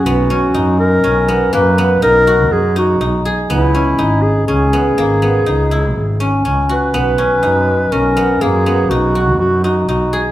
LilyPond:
<<
  \new Staff \with { instrumentName = "Clarinet" } { \time 7/4 \key b \major \tempo 4 = 122 fis'4. ais'4. b'4 ais'4 gis'8 fis'4 r8 | e'4. gis'8 gis'1 r8 b'8~ | b'2 ais'4 gis'4 fis'4 fis'8 fis'8 fis'8. r16 | }
  \new Staff \with { instrumentName = "Guzheng" } { \time 7/4 \key b \major b8 cis'8 dis'4 cis'8 b8 ais8 b8 dis'8 fis'4 dis'8 dis'8 gis'8 | b8 cis'8 dis'4 cis'8 b8 ais8 b8 dis'8 e'4 cis'8 cis'8 fis'8 | b8 cis'8 dis'4 cis'8 b8 ais8 b8 dis'8 fis'4 dis'8 dis'8 gis'8 | }
  \new Staff \with { instrumentName = "Double bass" } { \clef bass \time 7/4 \key b \major b,,4 fis,4 b,,4 fis,4 b,,4 fis,4 b,,8 r8 | cis,4 gis,,4 cis,4 gis,,4 cis,4 gis,,4 cis,8 r8 | b,,4 fis,4 b,,4 fis,4 b,,4 fis,4 b,,8 r8 | }
>>